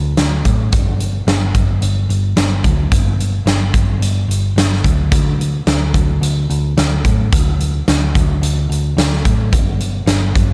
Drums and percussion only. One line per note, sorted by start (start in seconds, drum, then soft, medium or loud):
0.17 snare loud
0.17 closed hi-hat medium
0.45 kick medium
0.45 closed hi-hat medium
0.72 kick loud
0.72 closed hi-hat medium
1.00 closed hi-hat medium
1.28 snare medium
1.28 closed hi-hat medium
1.54 kick medium
1.54 closed hi-hat medium
1.82 closed hi-hat medium
2.10 closed hi-hat medium
2.37 snare loud
2.37 closed hi-hat medium
2.64 kick medium
2.64 closed hi-hat medium
2.92 kick loud
2.92 closed hi-hat medium
3.20 closed hi-hat medium
3.47 snare loud
3.47 closed hi-hat medium
3.74 kick medium
3.74 closed hi-hat medium
4.02 closed hi-hat medium
4.31 closed hi-hat medium
4.58 snare loud
4.58 closed hi-hat medium
4.73 snare soft
4.84 kick medium
4.84 closed hi-hat medium
5.12 kick loud
5.12 closed hi-hat medium
5.41 closed hi-hat medium
5.67 snare loud
5.67 closed hi-hat medium
5.94 kick medium
5.94 closed hi-hat medium
6.23 closed hi-hat medium
6.50 closed hi-hat medium
6.78 snare loud
6.78 closed hi-hat medium
7.05 kick medium
7.05 closed hi-hat medium
7.33 kick loud
7.33 closed hi-hat medium
7.60 closed hi-hat medium
7.88 snare loud
7.88 closed hi-hat medium
8.15 kick medium
8.15 closed hi-hat medium
8.43 closed hi-hat medium
8.72 closed hi-hat medium
8.98 snare loud
8.98 closed hi-hat medium
9.13 snare soft
9.25 kick medium
9.25 closed hi-hat medium
9.53 kick loud
9.53 closed hi-hat medium
9.80 closed hi-hat medium
10.07 snare loud
10.07 closed hi-hat medium
10.35 kick medium
10.35 closed hi-hat medium